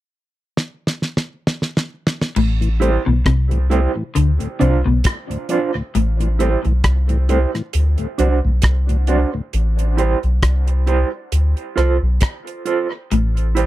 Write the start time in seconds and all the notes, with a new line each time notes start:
0.57 snare
0.87 snare
1.02 snare
1.17 snare
1.47 snare
1.62 snare
1.77 snare
2.07 snare
2.21 snare
2.36 A1 A2, crash
2.61 A2 E3, closed hi-hat
2.80 G3 A3 C4 E4 G4 C5, closed hi-hat
3.06 B1 A2 B2 E3
3.26 C2 C3, kick, cross-stick, closed hi-hat
3.51 A2 E3, closed hi-hat
3.70 G3 A3 C4 E4 G4 C5, closed hi-hat
3.96 A2 E3
4.15 D2 D3, closed hi-hat
4.40 D2 A2, closed hi-hat
4.59 C2 C3 F3 C4 D4 F4 C5, closed hi-hat
4.85 B1 D2 A2 B2
5.04 kick, cross-stick, closed hi-hat
5.30 D2 A2, closed hi-hat
5.49 F3 C4 D4 F4 C5, closed hi-hat
5.75 D2 A2, muted clean electric guitar stroke
5.95 A1 A2, closed hi-hat
6.20 A2 E3, closed hi-hat
6.39 G3 A3 C4 E4 G4 C5, closed hi-hat
6.65 B1 A2 E3, closed hi-hat
6.84 C2, kick, cross-stick, closed hi-hat
7.09 A2 E3, closed hi-hat
7.29 G3 A3 C4 E4 G4 C5, closed hi-hat
7.55 A2 E3, cross-stick, closed hi-hat
7.73 D2, closed hi-hat
7.98 D2 A2, closed hi-hat
8.18 C2 F#3 C4 D4 F#4 C5, closed hi-hat
8.45 B1 D2 A2
8.62 C2, kick, cross-stick, closed hi-hat
8.89 D2 A2, closed hi-hat
9.07 F#3 C4 D4 F#4 C5, closed hi-hat
9.34 D2 A2, muted clean electric guitar stroke
9.53 A1, closed hi-hat
9.79 closed hi-hat
9.97 E4 G4 C5, closed hi-hat
10.23 B1, closed hi-hat
10.42 C2, kick, cross-stick, closed hi-hat
10.67 closed hi-hat
10.87 E4 G4 C5, closed hi-hat
11.32 D2, closed hi-hat
11.57 closed hi-hat
11.76 C2 F4 A4 C5, cross-stick, closed hi-hat
12.02 B1
12.21 kick, cross-stick, closed hi-hat
12.47 closed hi-hat
12.65 F4 A4 C5, closed hi-hat
12.92 muted clean electric guitar stroke
13.11 A1 A2, closed hi-hat
13.37 closed hi-hat
13.55 E4 G4 C5, closed hi-hat